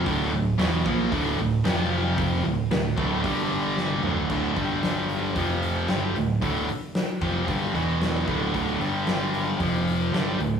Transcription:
<<
  \new Staff \with { instrumentName = "Distorted electric guitar" } { \clef bass \time 4/4 \key d \minor \tempo 4 = 113 <d, a, d>8 <d, a,>8 <e, b, e>8 <bes, f bes>8 <d, a, d>8 <d, a,>8 <f, c f>4~ | <f, c f>8 <d, a,>8 <d, a,>8 <d, a, d>8 <g, d g>4. <d, a, d>8 | \key d \dorian <d, a, d>8 <g, d g>4. <f, c f>4 <g, d g>8 <d, a,>8 | <d, a, d>8 r4 <f, c f>8 <g, d g>8 <e, b, e>4 <d, a, d>8 |
<d, a, d>8 <g, d g>4. <f, c f>4 <g, d g>8 <d, a,>8 | }
  \new Staff \with { instrumentName = "Overdriven electric guitar" } { \clef bass \time 4/4 \key d \minor <d, a, d>8 <d, a,>8 <e, b, e>8 <bes, f bes>8 <d, a, d>8 <d, a,>8 <f, c f>4~ | <f, c f>8 <d, a,>8 <d, a,>8 <d, a, d>8 <g, d g>4. <d, a, d>8 | \key d \dorian <d, a, d>8 <g, d g>4. <f, c f>4 <g, d g>8 <d, a,>8 | <d, a, d>8 r4 <f, c f>8 <g, d g>8 <e, b, e>4 <d, a, d>8 |
<d, a, d>8 <g, d g>4. <f, c f>4 <g, d g>8 <d, a,>8 | }
  \new Staff \with { instrumentName = "Picked electric bass" } { \clef bass \time 4/4 \key d \minor d,,8 d,,8 e,,8 bes,,8 d,,8 d,,8 f,,4~ | f,,8 d,,8 d,,8 d,,8 g,,4. d,,8 | \key d \dorian d,,8 g,,4. f,,4 g,,8 d,,8 | d,,8 r4 f,,8 g,,8 e,,4 d,,8 |
d,,8 g,,4. f,,4 g,,8 d,,8 | }
  \new DrumStaff \with { instrumentName = "Drums" } \drummode { \time 4/4 <hho bd>4 <hho sn>8 bd8 <hho bd>4 <hho sn>4 | <hho bd>4 <hho sn>8 bd8 <hho bd>4 sn16 tommh16 toml16 tomfh16 | <cymc bd>8 <hho bd>8 <hho sn>8 hho8 <hho bd>8 hho8 <hho sn>8 hho8 | <hho bd>8 hho8 <hho sn>8 <hho bd>8 <hho bd>8 hho8 <hho sn>8 <hho bd>8 |
<hho bd>8 hho8 <hho sn>8 hho8 <hho bd>8 hho8 <hho sn>8 hho8 | }
>>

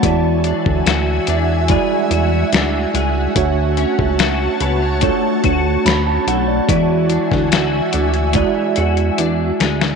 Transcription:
<<
  \new Staff \with { instrumentName = "Ambient pad" } { \time 4/4 \key e \mixolydian \tempo 4 = 72 << { <e'' gis''>1 | <cis'' a''>1 | <e'' gis''>1 | } \\ { fis'1~ | fis'1 | fis'1 | } >> }
  \new Staff \with { instrumentName = "Tine electric piano" } { \time 4/4 \key e \mixolydian << { fis''16 r2. r8. | r2. b''16 a''16 fis''16 d''16~ | d''16 r2. r8. | } \\ { <gis e' fis' d''>4. r8 <g gis e' fis' d''>4. r8 | <a d' fis' cis''>4. r8 <a d' f' fis' cis''>4. r8 | <gis e' fis' d''>4. r8 <gis e' fis' d''>4. r8 | } >> }
  \new Staff \with { instrumentName = "Clean electric guitar" } { \time 4/4 \key e \mixolydian e8 d'8 fis'8 d'8 gis8 fis'8 d'8 gis8 | r8 cis'8 fis'8 b16 cis'16 a8 fis'8 cis'8 a8 | e8 d'8 fis'8 d'8 gis8 fis'8 d'8 gis8 | }
  \new Staff \with { instrumentName = "Analog synth bass" } { \clef bass \time 4/4 \key e \mixolydian e,8. d,16 d,8 e,8. r16 e,8 d,8 cis,8 | d,8. cis,8. cis,8. r16 d,8 d,8 b,,8 | e,8. d,8. d,8. r16 e,8 e,8 d,8 | }
  \new DrumStaff \with { instrumentName = "Drums" } \drummode { \time 4/4 <hh bd>8 hh16 bd16 <hh sn>8 hh8 <hh bd>8 hh8 <hh sn>8 hh8 | <hh bd>8 hh16 bd16 <hh sn>8 hh8 <hh bd>8 <hh bd>8 <hh sn>8 hh8 | <hh bd>8 hh16 <bd sn>16 <hh sn>8 hh16 hh16 <hh bd>8 hh16 hh16 hh8 <hh sn>16 sn16 | }
>>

